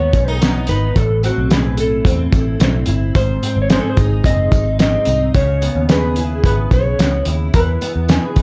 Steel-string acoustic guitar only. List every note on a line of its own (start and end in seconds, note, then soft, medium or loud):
0.00 2.26 E3 medium
0.00 0.99 G#3 medium
0.00 0.40 B3 medium
0.00 0.13 D#4 medium
0.00 1.26 B4 medium
0.13 0.28 C#4 medium
0.28 0.67 D#4 medium
0.41 1.22 B3 medium
0.68 1.01 D#4 medium
0.96 3.15 A2 medium
1.23 2.05 C4 medium
1.51 3.21 B4 medium
1.77 2.31 E4 medium
2.05 2.59 C4 medium
2.32 2.87 E4 medium
2.60 3.42 C4 medium
2.88 3.21 E4 medium
3.15 5.35 G#2 medium
3.43 4.22 C4 medium
3.70 5.89 G#4 medium
3.97 4.51 D#4 medium
4.24 4.78 C4 medium
4.52 5.06 D#4 medium
4.79 5.40 C4 medium
5.07 5.40 D#4 medium
5.34 7.54 C#3 medium
5.61 6.44 B3 medium
5.90 8.09 G#4 medium
6.17 6.71 E4 medium
6.44 6.99 B3 medium
6.72 7.27 E4 medium
7.00 7.81 B3 medium
7.27 8.36 E4 medium
7.55 8.42 E3 medium
7.81 8.42 B3 medium
8.09 8.42 G#4 medium
8.37 8.42 D#4 medium